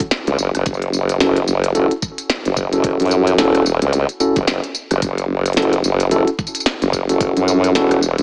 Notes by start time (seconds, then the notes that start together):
0.00 kick, closed hi-hat, tambourine
0.11 snare, closed hi-hat
0.27 C#2, closed hi-hat, tambourine
0.38 F#1, tambourine
0.55 F#1, cross-stick, closed hi-hat, tambourine
0.66 F#1, kick, closed hi-hat, tambourine
0.74 tambourine
0.82 closed hi-hat
0.93 tambourine
1.09 closed hi-hat, tambourine
1.20 C#4 E4 F#4 A4, snare, closed hi-hat, tambourine
1.36 closed hi-hat, tambourine
1.48 F#1, tambourine
1.64 closed hi-hat, tambourine
1.75 F#1 C#4 E4 F#4 A4, closed hi-hat, tambourine
1.91 closed hi-hat, tambourine
2.02 kick, tambourine
2.18 closed hi-hat, tambourine
2.30 snare, closed hi-hat, tambourine
2.45 F#1, closed hi-hat, tambourine
2.57 kick, tambourine
2.73 C#4 E4 F#4 A4, closed hi-hat, tambourine
2.84 kick, closed hi-hat, tambourine
3.00 F#2, closed hi-hat, tambourine
3.02 closed hi-hat
3.06 closed hi-hat
3.08 closed hi-hat, tambourine
3.27 closed hi-hat, tambourine
3.38 E1 C#4 E4 F#4 A4, snare, closed hi-hat, tambourine
3.55 cross-stick, closed hi-hat, tambourine
3.66 tambourine
3.82 C#2, closed hi-hat, tambourine
3.93 closed hi-hat, tambourine
4.09 closed hi-hat, tambourine
4.20 C#4 E4 F#4 A4, tambourine
4.36 F#1, kick, closed hi-hat, tambourine
4.48 snare, closed hi-hat, tambourine
4.64 closed hi-hat, tambourine
4.75 tambourine
4.91 F#1, cross-stick, closed hi-hat, tambourine
5.02 F#1, kick, closed hi-hat, tambourine
5.18 closed hi-hat, tambourine
5.46 closed hi-hat, tambourine
5.53 C#4 E4 A4, snare, closed hi-hat
5.57 F#4, closed hi-hat, tambourine
5.62 closed hi-hat
5.73 closed hi-hat, tambourine
5.84 F#1, tambourine
6.00 closed hi-hat, tambourine
6.11 F#1 C#4 E4 F#4 A4, closed hi-hat, tambourine
6.28 closed hi-hat, tambourine
6.39 kick, tambourine
6.47 tambourine
6.55 closed hi-hat, tambourine
6.60 tambourine
6.66 snare, closed hi-hat
6.82 F#1, closed hi-hat, tambourine
6.93 kick, tambourine
7.09 C#4 E4 F#4 A4, closed hi-hat, tambourine
7.21 kick, closed hi-hat, tambourine
7.37 F#2, closed hi-hat, tambourine
7.48 tambourine
7.64 closed hi-hat, tambourine
7.75 E1 C#4 E4 F#4 A4, snare, closed hi-hat, tambourine
7.91 cross-stick, closed hi-hat, tambourine
8.03 tambourine
8.18 C#2, closed hi-hat, tambourine